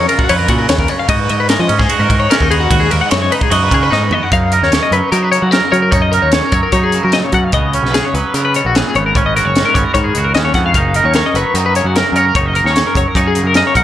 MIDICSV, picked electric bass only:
0, 0, Header, 1, 2, 480
1, 0, Start_track
1, 0, Tempo, 401875
1, 1305, Time_signature, 4, 2, 24, 8
1, 16527, End_track
2, 0, Start_track
2, 0, Title_t, "Picked electric bass"
2, 0, Program_c, 0, 34
2, 357, Note_on_c, 0, 41, 96
2, 556, Note_off_c, 0, 41, 0
2, 581, Note_on_c, 0, 46, 86
2, 787, Note_off_c, 0, 46, 0
2, 827, Note_on_c, 0, 39, 97
2, 1031, Note_off_c, 0, 39, 0
2, 1298, Note_on_c, 0, 44, 85
2, 1506, Note_off_c, 0, 44, 0
2, 1553, Note_on_c, 0, 44, 71
2, 1858, Note_off_c, 0, 44, 0
2, 1903, Note_on_c, 0, 53, 95
2, 2007, Note_off_c, 0, 53, 0
2, 2024, Note_on_c, 0, 44, 99
2, 2230, Note_off_c, 0, 44, 0
2, 2378, Note_on_c, 0, 44, 76
2, 2484, Note_off_c, 0, 44, 0
2, 2503, Note_on_c, 0, 44, 92
2, 2710, Note_off_c, 0, 44, 0
2, 2873, Note_on_c, 0, 39, 89
2, 3179, Note_off_c, 0, 39, 0
2, 3234, Note_on_c, 0, 39, 87
2, 3437, Note_off_c, 0, 39, 0
2, 3494, Note_on_c, 0, 39, 80
2, 3586, Note_off_c, 0, 39, 0
2, 3727, Note_on_c, 0, 42, 95
2, 3925, Note_off_c, 0, 42, 0
2, 4192, Note_on_c, 0, 42, 106
2, 4397, Note_off_c, 0, 42, 0
2, 4438, Note_on_c, 0, 49, 82
2, 4640, Note_off_c, 0, 49, 0
2, 4683, Note_on_c, 0, 44, 87
2, 4883, Note_off_c, 0, 44, 0
2, 5164, Note_on_c, 0, 42, 84
2, 5467, Note_off_c, 0, 42, 0
2, 5514, Note_on_c, 0, 39, 67
2, 5719, Note_off_c, 0, 39, 0
2, 5868, Note_on_c, 0, 42, 86
2, 5973, Note_off_c, 0, 42, 0
2, 6117, Note_on_c, 0, 54, 84
2, 6423, Note_off_c, 0, 54, 0
2, 6478, Note_on_c, 0, 54, 80
2, 6682, Note_off_c, 0, 54, 0
2, 6838, Note_on_c, 0, 54, 88
2, 7042, Note_off_c, 0, 54, 0
2, 7075, Note_on_c, 0, 42, 84
2, 7383, Note_off_c, 0, 42, 0
2, 7435, Note_on_c, 0, 39, 84
2, 7641, Note_off_c, 0, 39, 0
2, 7791, Note_on_c, 0, 42, 96
2, 7896, Note_off_c, 0, 42, 0
2, 8033, Note_on_c, 0, 54, 86
2, 8342, Note_off_c, 0, 54, 0
2, 8412, Note_on_c, 0, 54, 81
2, 8611, Note_off_c, 0, 54, 0
2, 8748, Note_on_c, 0, 54, 98
2, 8957, Note_off_c, 0, 54, 0
2, 8995, Note_on_c, 0, 37, 86
2, 9304, Note_off_c, 0, 37, 0
2, 9348, Note_on_c, 0, 35, 85
2, 9557, Note_off_c, 0, 35, 0
2, 9721, Note_on_c, 0, 37, 101
2, 9822, Note_off_c, 0, 37, 0
2, 9960, Note_on_c, 0, 49, 87
2, 10266, Note_off_c, 0, 49, 0
2, 10329, Note_on_c, 0, 34, 85
2, 10529, Note_off_c, 0, 34, 0
2, 10693, Note_on_c, 0, 32, 98
2, 10891, Note_off_c, 0, 32, 0
2, 10937, Note_on_c, 0, 32, 91
2, 11235, Note_off_c, 0, 32, 0
2, 11295, Note_on_c, 0, 30, 79
2, 11491, Note_off_c, 0, 30, 0
2, 11646, Note_on_c, 0, 32, 91
2, 11744, Note_off_c, 0, 32, 0
2, 11885, Note_on_c, 0, 44, 88
2, 12085, Note_off_c, 0, 44, 0
2, 12125, Note_on_c, 0, 37, 73
2, 12336, Note_off_c, 0, 37, 0
2, 12371, Note_on_c, 0, 39, 79
2, 12579, Note_off_c, 0, 39, 0
2, 12589, Note_on_c, 0, 41, 77
2, 12806, Note_off_c, 0, 41, 0
2, 12831, Note_on_c, 0, 30, 90
2, 13138, Note_off_c, 0, 30, 0
2, 13184, Note_on_c, 0, 39, 80
2, 13392, Note_off_c, 0, 39, 0
2, 13547, Note_on_c, 0, 30, 85
2, 13651, Note_off_c, 0, 30, 0
2, 13785, Note_on_c, 0, 42, 82
2, 14094, Note_off_c, 0, 42, 0
2, 14146, Note_on_c, 0, 42, 79
2, 14352, Note_off_c, 0, 42, 0
2, 14479, Note_on_c, 0, 42, 92
2, 14696, Note_off_c, 0, 42, 0
2, 14751, Note_on_c, 0, 30, 82
2, 15057, Note_off_c, 0, 30, 0
2, 15100, Note_on_c, 0, 39, 74
2, 15308, Note_off_c, 0, 39, 0
2, 15470, Note_on_c, 0, 30, 91
2, 15571, Note_off_c, 0, 30, 0
2, 15707, Note_on_c, 0, 42, 84
2, 16014, Note_off_c, 0, 42, 0
2, 16045, Note_on_c, 0, 42, 84
2, 16259, Note_off_c, 0, 42, 0
2, 16427, Note_on_c, 0, 35, 96
2, 16527, Note_off_c, 0, 35, 0
2, 16527, End_track
0, 0, End_of_file